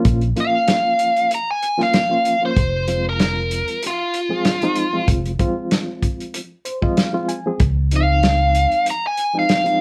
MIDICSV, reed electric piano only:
0, 0, Header, 1, 2, 480
1, 0, Start_track
1, 0, Key_signature, -4, "minor"
1, 0, Tempo, 629261
1, 41, Time_signature, 4, 2, 24, 8
1, 7482, End_track
2, 0, Start_track
2, 0, Title_t, "Reed electric piano"
2, 0, Program_c, 0, 4
2, 0, Note_on_c, 0, 53, 77
2, 0, Note_on_c, 0, 58, 84
2, 0, Note_on_c, 0, 61, 75
2, 0, Note_on_c, 0, 65, 97
2, 211, Note_off_c, 0, 53, 0
2, 213, Note_off_c, 0, 58, 0
2, 213, Note_off_c, 0, 61, 0
2, 215, Note_off_c, 0, 65, 0
2, 277, Note_on_c, 0, 53, 69
2, 277, Note_on_c, 0, 58, 67
2, 283, Note_on_c, 0, 61, 61
2, 286, Note_on_c, 0, 65, 79
2, 1040, Note_off_c, 0, 53, 0
2, 1040, Note_off_c, 0, 58, 0
2, 1043, Note_off_c, 0, 61, 0
2, 1044, Note_off_c, 0, 65, 0
2, 1357, Note_on_c, 0, 53, 75
2, 1358, Note_on_c, 0, 58, 68
2, 1365, Note_on_c, 0, 61, 62
2, 1365, Note_on_c, 0, 65, 79
2, 1549, Note_off_c, 0, 53, 0
2, 1550, Note_off_c, 0, 58, 0
2, 1553, Note_off_c, 0, 61, 0
2, 1553, Note_off_c, 0, 65, 0
2, 1599, Note_on_c, 0, 53, 75
2, 1604, Note_on_c, 0, 58, 61
2, 1608, Note_on_c, 0, 61, 71
2, 1612, Note_on_c, 0, 65, 84
2, 1791, Note_off_c, 0, 53, 0
2, 1793, Note_off_c, 0, 58, 0
2, 1795, Note_off_c, 0, 61, 0
2, 1797, Note_off_c, 0, 65, 0
2, 1841, Note_on_c, 0, 53, 71
2, 1846, Note_on_c, 0, 61, 69
2, 1847, Note_on_c, 0, 58, 63
2, 1853, Note_on_c, 0, 65, 79
2, 1957, Note_off_c, 0, 53, 0
2, 1960, Note_off_c, 0, 58, 0
2, 1960, Note_off_c, 0, 61, 0
2, 1963, Note_off_c, 0, 65, 0
2, 2192, Note_on_c, 0, 53, 69
2, 2196, Note_on_c, 0, 56, 63
2, 2199, Note_on_c, 0, 60, 66
2, 2199, Note_on_c, 0, 65, 73
2, 2958, Note_off_c, 0, 53, 0
2, 2959, Note_off_c, 0, 56, 0
2, 2961, Note_off_c, 0, 60, 0
2, 2961, Note_off_c, 0, 65, 0
2, 3274, Note_on_c, 0, 53, 74
2, 3280, Note_on_c, 0, 56, 71
2, 3281, Note_on_c, 0, 60, 68
2, 3285, Note_on_c, 0, 68, 85
2, 3468, Note_off_c, 0, 53, 0
2, 3471, Note_off_c, 0, 56, 0
2, 3471, Note_off_c, 0, 60, 0
2, 3473, Note_off_c, 0, 68, 0
2, 3529, Note_on_c, 0, 53, 85
2, 3529, Note_on_c, 0, 56, 82
2, 3532, Note_on_c, 0, 60, 80
2, 3536, Note_on_c, 0, 63, 99
2, 3715, Note_off_c, 0, 53, 0
2, 3716, Note_off_c, 0, 56, 0
2, 3717, Note_off_c, 0, 60, 0
2, 3719, Note_off_c, 0, 63, 0
2, 3761, Note_on_c, 0, 53, 87
2, 3763, Note_on_c, 0, 56, 73
2, 3763, Note_on_c, 0, 60, 72
2, 3769, Note_on_c, 0, 65, 88
2, 4047, Note_off_c, 0, 53, 0
2, 4048, Note_off_c, 0, 56, 0
2, 4048, Note_off_c, 0, 60, 0
2, 4051, Note_off_c, 0, 65, 0
2, 4111, Note_on_c, 0, 53, 82
2, 4117, Note_on_c, 0, 56, 72
2, 4121, Note_on_c, 0, 60, 82
2, 4123, Note_on_c, 0, 65, 93
2, 4877, Note_off_c, 0, 53, 0
2, 4880, Note_off_c, 0, 56, 0
2, 4882, Note_off_c, 0, 60, 0
2, 4883, Note_off_c, 0, 65, 0
2, 5073, Note_on_c, 0, 72, 64
2, 5196, Note_off_c, 0, 72, 0
2, 5199, Note_on_c, 0, 53, 83
2, 5201, Note_on_c, 0, 56, 73
2, 5206, Note_on_c, 0, 60, 77
2, 5207, Note_on_c, 0, 75, 66
2, 5210, Note_on_c, 0, 65, 97
2, 5312, Note_off_c, 0, 75, 0
2, 5319, Note_on_c, 0, 77, 72
2, 5391, Note_off_c, 0, 53, 0
2, 5392, Note_off_c, 0, 56, 0
2, 5394, Note_off_c, 0, 60, 0
2, 5396, Note_off_c, 0, 65, 0
2, 5440, Note_on_c, 0, 56, 74
2, 5441, Note_on_c, 0, 53, 88
2, 5447, Note_on_c, 0, 60, 78
2, 5449, Note_on_c, 0, 65, 96
2, 5544, Note_off_c, 0, 77, 0
2, 5556, Note_on_c, 0, 80, 70
2, 5631, Note_off_c, 0, 56, 0
2, 5632, Note_off_c, 0, 53, 0
2, 5634, Note_off_c, 0, 60, 0
2, 5636, Note_off_c, 0, 65, 0
2, 5690, Note_on_c, 0, 53, 84
2, 5693, Note_on_c, 0, 56, 71
2, 5697, Note_on_c, 0, 60, 79
2, 5699, Note_on_c, 0, 68, 93
2, 5782, Note_off_c, 0, 80, 0
2, 5802, Note_off_c, 0, 53, 0
2, 5804, Note_off_c, 0, 56, 0
2, 5806, Note_off_c, 0, 60, 0
2, 5807, Note_off_c, 0, 68, 0
2, 6037, Note_on_c, 0, 53, 68
2, 6041, Note_on_c, 0, 56, 63
2, 6046, Note_on_c, 0, 60, 63
2, 6049, Note_on_c, 0, 63, 74
2, 6801, Note_off_c, 0, 53, 0
2, 6802, Note_off_c, 0, 56, 0
2, 6805, Note_off_c, 0, 60, 0
2, 6807, Note_off_c, 0, 63, 0
2, 7123, Note_on_c, 0, 53, 71
2, 7126, Note_on_c, 0, 56, 67
2, 7130, Note_on_c, 0, 63, 85
2, 7131, Note_on_c, 0, 60, 64
2, 7313, Note_off_c, 0, 53, 0
2, 7314, Note_off_c, 0, 56, 0
2, 7317, Note_off_c, 0, 60, 0
2, 7317, Note_off_c, 0, 63, 0
2, 7357, Note_on_c, 0, 53, 80
2, 7365, Note_on_c, 0, 56, 74
2, 7365, Note_on_c, 0, 60, 72
2, 7371, Note_on_c, 0, 63, 82
2, 7482, Note_off_c, 0, 53, 0
2, 7482, Note_off_c, 0, 56, 0
2, 7482, Note_off_c, 0, 60, 0
2, 7482, Note_off_c, 0, 63, 0
2, 7482, End_track
0, 0, End_of_file